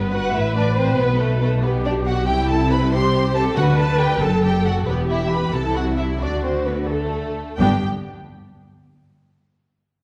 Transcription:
0.00 0.33 G1 medium
0.00 0.33 G2 medium
0.00 0.13 B3 medium
0.00 0.13 B4 medium
0.00 1.64 B4 medium
0.13 0.35 F#4 medium
0.13 0.34 F#5 medium
0.34 0.99 A1 medium
0.34 0.99 A2 soft
0.34 0.56 E4 medium
0.34 0.56 E5 medium
0.57 0.65 D4 medium
0.57 0.77 D5 medium
0.77 0.99 C4 medium
0.77 0.99 C5 medium
0.99 2.26 B1 medium
0.99 2.25 B2 medium
0.99 1.21 B3 medium
0.99 1.21 B4 medium
1.20 1.41 A3 medium
1.20 1.41 A4 medium
1.42 1.63 A3 soft
1.42 1.51 A4 medium
1.63 1.85 B3 medium
1.63 2.27 G4 medium
1.63 1.72 B4 medium
1.85 1.93 D4 medium
1.85 1.93 D5 medium
2.06 2.27 F#4 medium
2.06 2.27 F#5 medium
2.27 3.57 C2 medium
2.27 3.57 C3 medium
2.27 2.91 E4 medium
2.27 2.50 G4 medium
2.27 2.49 G5 medium
2.50 2.71 A4 medium
2.50 2.71 A5 medium
2.71 2.93 B4 medium
2.71 2.92 B5 medium
2.92 3.57 G4 medium
2.92 3.35 C5 medium
2.92 3.34 C6 medium
3.35 3.57 A4 medium
3.35 3.43 A5 medium
3.56 4.21 D2 medium
3.56 4.21 D3 medium
3.56 4.19 D3 medium
3.56 3.79 F#4 medium
3.56 4.21 B4 medium
3.56 3.64 F#5 medium
3.78 4.01 A4 medium
3.78 4.00 A5 medium
4.00 4.22 G4 medium
4.00 4.22 G5 medium
4.22 4.88 F#1 medium
4.22 4.88 F#2 medium
4.22 4.44 A4 medium
4.22 4.88 A4 medium
4.22 4.44 A5 medium
4.44 4.66 G4 medium
4.44 4.66 G5 medium
4.66 4.88 F#4 medium
4.66 4.74 F#5 medium
4.88 5.53 E1 medium
4.88 5.53 E2 medium
4.88 5.10 B3 medium
4.88 5.53 G4 medium
4.88 4.96 B4 medium
5.10 5.32 E4 medium
5.10 5.32 E5 medium
5.32 5.54 B4 medium
5.32 5.54 B5 medium
5.54 6.20 C2 medium
5.54 6.20 C3 soft
5.54 6.21 E4 medium
5.54 5.76 A4 medium
5.54 5.76 A5 medium
5.75 5.98 F#4 medium
5.75 5.83 F#5 medium
5.97 6.20 E4 soft
5.97 6.05 E5 medium
6.20 7.38 D2 soft
6.20 7.38 D3 soft
6.20 6.43 D4 medium
6.20 6.87 F#4 medium
6.20 6.43 D5 medium
6.43 6.51 C4 soft
6.43 6.66 C5 medium
6.66 6.74 B3 soft
6.66 6.81 B4 soft
6.82 6.89 B4 soft
6.88 7.57 A3 soft
6.88 7.24 A4 soft
6.88 7.59 A4 soft
7.58 7.84 G1 medium
7.58 7.84 G2 medium
7.58 7.80 G2 soft
7.58 7.84 B3 soft
7.58 7.84 D4 soft
7.58 7.84 G4 medium
7.58 7.84 G5 soft

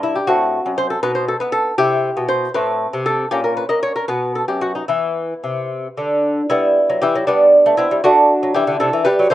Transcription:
0.00 0.19 G2 medium
0.00 0.25 C4 soft
0.00 0.16 E4 medium
0.15 0.28 G4 medium
0.27 0.58 A2 medium
0.27 0.99 C4 soft
0.27 0.75 F#4 medium
0.66 0.95 F#2 medium
0.78 0.90 C5 medium
0.90 1.02 A4 medium
1.03 1.33 B2 medium
1.03 1.75 D#4 soft
1.03 1.15 B4 medium
1.15 1.28 C5 medium
1.28 1.40 A4 medium
1.40 1.71 B3 medium
1.40 1.52 B4 medium
1.52 1.77 A4 medium
1.78 2.09 C3 medium
1.78 2.50 E4 soft
1.78 2.27 G4 medium
2.17 2.47 B2 medium
2.29 2.53 C5 medium
2.54 2.86 A2 medium
2.54 3.28 C4 medium
2.54 3.04 B4 medium
2.93 3.24 C3 medium
3.06 3.31 A4 medium
3.31 3.63 A#2 medium
3.31 4.05 C#4 medium
3.31 3.43 G4 medium
3.44 3.56 A#4 medium
3.57 3.69 B4 medium
3.69 4.01 A#3 medium
3.69 3.82 D#5 medium
3.83 3.95 C#5 medium
3.96 4.08 A#4 medium
4.08 4.41 B2 medium
4.08 4.85 B3 soft
4.08 4.34 B4 medium
4.35 4.48 A4 medium
4.48 4.81 F#2 medium
4.48 4.62 G4 medium
4.61 4.75 F#4 medium
4.75 4.88 D#4 medium
4.88 5.33 E3 medium
4.88 6.47 B3 soft
4.88 5.67 E4 medium
5.44 5.87 C3 medium
5.97 6.40 D3 medium
6.50 6.79 G3 medium
6.50 6.99 B3 medium
6.50 7.00 E4 medium
6.90 7.02 F#3 medium
7.02 7.15 E3 medium
7.02 7.26 E4 medium
7.02 7.27 G4 medium
7.16 7.28 F#3 medium
7.27 7.56 G3 medium
7.27 7.76 B3 medium
7.27 7.77 D4 medium
7.66 7.78 A3 medium
7.77 7.91 B3 medium
7.77 8.03 C4 medium
7.77 8.03 E4 medium
7.91 8.04 G3 medium
8.04 8.32 A3 medium
8.04 8.52 D4 medium
8.04 8.53 F#4 medium
8.43 8.55 F#3 medium
8.54 8.67 E3 medium
8.54 8.79 E4 medium
8.54 8.79 G4 medium
8.67 8.80 D3 medium
8.80 8.93 C3 medium
8.80 9.04 E4 medium
8.80 9.04 A4 medium
8.93 9.05 E3 medium
9.05 9.18 G3 medium
9.05 9.29 G4 medium
9.05 9.29 B4 medium
9.19 9.30 F#3 medium
9.30 9.34 E3 medium
9.30 9.34 C5 medium

